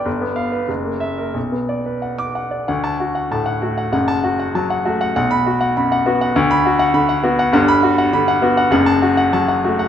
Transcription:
<<
  \new Staff \with { instrumentName = "Grand piano" } { \time 2/4 \key b \minor \tempo 4 = 98 << { r8 f''8 r8 e''8 | r4 r16 d'''8 r16 | r16 a''8 r4 r16 | r16 a''8 r4 r16 |
r16 b''8 r4 r16 | r16 b''8 r4 r16 | \key g \lydian r16 b''8 r4 r16 | r16 a''8 r4 r16 | } \\ { r2 | r2 | fis''8 fis'16 fis''16 a''16 fis''16 fis'16 fis''16 | fis''8 fis'16 fis''16 a''16 fis''16 fis'16 fis''16 |
fis''8 fis'16 fis''16 b''16 fis''16 fis'16 fis''16 | fis''8 fis'16 fis''16 b''16 fis''16 fis'16 fis''16 | fis''8 fis'16 fis''16 b''16 fis''16 fis'16 fis''16 | fis''8 fis'16 fis''16 a''16 fis''16 fis'16 fis''16 | } >> }
  \new Staff \with { instrumentName = "Grand piano" } { \clef bass \time 2/4 \key b \minor g,,16 b8 b'16 fis,,16 ais8 ais'16 | b,,16 b16 d''16 b'16 fis''8 fis''16 d''16 | d,4 a,8 a8 | <fis,, fis,>4 fis8 a8 |
b,,4 fis,8 b8 | d,4 d8 b8 | \key g \lydian <g,, g,>4 d8 b8 | <fis,, fis,>4 fis8 a8 | }
>>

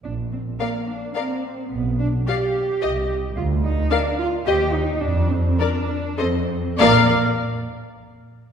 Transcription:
<<
  \new Staff \with { instrumentName = "Violin section" } { \time 3/4 \key bes \major \tempo 4 = 107 r4 f''4 f''4 | r4 f''4 ees''4 | r4 f''4 ees''4 | r4 d''4 ees''4 |
f''8 r2 r8 | }
  \new Staff \with { instrumentName = "Violin section" } { \time 3/4 \key bes \major r4 d''4 d''4 | r4 d''4 ees''4 | r4 d''4 c''4 | r4 bes'4 c''4 |
d''8 r2 r8 | }
  \new Staff \with { instrumentName = "Viola section" } { \time 3/4 \key bes \major r4 bes'4 bes'4 | r4 g'4 g'4 | r4 bes'4 g'4 | r4 bes'4 a'4 |
bes'8 r2 r8 | }
  \new Staff \with { instrumentName = "Cello section" } { \time 3/4 \key bes \major d'8 c'8 bes8 d'8 c'4 | b8 d'8 g'4. r8 | f'8 ees'8 d'8 f'8 g'8 ees'8 | d'8 c'8 d'4 c'4 |
bes8 r2 r8 | }
  \new Staff \with { instrumentName = "Double bass section" } { \clef bass \time 3/4 \key bes \major bes,,4 r2 | b,,4 r4 c,4 | d,4 r4 ees,4 | f,4 r4 f,4 |
bes,,8 r2 r8 | }
>>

